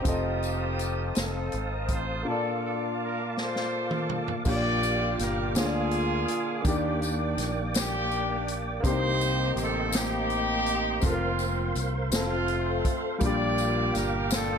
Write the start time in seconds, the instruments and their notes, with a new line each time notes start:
Already playing: tonewheel organ C5 D#6
0.02 fingered electric bass F1, grand piano C4 F4, tonewheel organ F5 A5, kick, closed hi-hat, tambourine
0.07 horn section C4 D#4 G4, grand piano A4 D#5
0.42 closed hi-hat, tambourine
0.79 closed hi-hat, tambourine
1.15 fingered electric bass F1, horn section C4 D#4, snare, closed hi-hat, tambourine
1.19 horn section A4
1.52 fingered electric bass G#1, closed hi-hat
1.74 horn section A#4
1.88 fingered electric bass A1, kick, closed hi-hat
1.93 horn section C5
2.23 grand piano A#2 A#3 F4, tonewheel organ A#3 F5 D6
2.27 horn section D4 F4 A4, grand piano D5 A5
2.66 horn section A4
3.04 horn section A#4
3.37 horn section F4 A4, snare
3.41 horn section C5
3.56 snare
3.91 mid tom
4.09 mid tom
4.28 floor tom
4.45 fingered electric bass A#1, grand piano A#2 A#3 D4 F4 G4 C#5, tonewheel organ A#3 F5 G5 D6, horn section F4 G4, kick, crash, tambourine
4.49 horn section D5
4.54 grand piano D5
4.83 closed hi-hat, tambourine
5.19 fingered electric bass G1, horn section A#4, snare, closed hi-hat, tambourine
5.55 fingered electric bass D2, grand piano D3 A#3 D4 F4 G#4 C#5, horn section F4 G#4, tonewheel organ F5 G#5, snare, closed hi-hat, tambourine
5.65 grand piano D5
5.91 closed hi-hat
6.28 closed hi-hat
6.62 fingered electric bass D#2, grand piano D#3 A#3 D4, tonewheel organ D5 G5, kick, closed hi-hat, tambourine
6.66 horn section A#3 D4 G4, grand piano G4 D5
7.02 closed hi-hat, tambourine
7.37 fingered electric bass A#1, snare, closed hi-hat, tambourine
7.74 horn section A#3 D4 G4, snare, closed hi-hat, tambourine
8.11 closed hi-hat
8.48 closed hi-hat
8.80 fingered electric bass C2, grand piano C3 A#3 C4 D4, tonewheel organ D#5 G5 C6, kick, closed hi-hat
8.85 horn section D#4 G4 C5, grand piano G4 C5, tambourine
8.90 grand piano D#4
9.21 closed hi-hat, tambourine
9.56 fingered electric bass A1, closed hi-hat, tambourine
9.62 horn section A4
9.92 horn section A#3, snare, closed hi-hat, tambourine
9.97 horn section D#4 G4
10.30 closed hi-hat
10.66 closed hi-hat
11.01 fingered electric bass F1, horn section A#3 C4, grand piano C4 F4 A4, tonewheel organ A#4 C5 F5, kick, closed hi-hat, tambourine
11.06 horn section F4
11.11 grand piano A#4
11.39 closed hi-hat, tambourine
11.75 fingered electric bass C2, closed hi-hat, tambourine
12.11 fingered electric bass F1, grand piano C4 F4 A4, horn section C4, tonewheel organ A4, snare, closed hi-hat, tambourine
12.15 horn section A3 F4
12.48 closed hi-hat
12.85 kick, closed hi-hat
13.18 fingered electric bass A#1, grand piano A#2 G3 A#3 D4, tonewheel organ A#3 G5 D6, kick, closed hi-hat, tambourine
13.24 grand piano F4 G4, horn section F4 G4 D5
13.58 closed hi-hat, tambourine
13.95 fingered electric bass G1, horn section A#4, snare, closed hi-hat, tambourine
14.30 horn section D4 F4 A4, snare, closed hi-hat, tambourine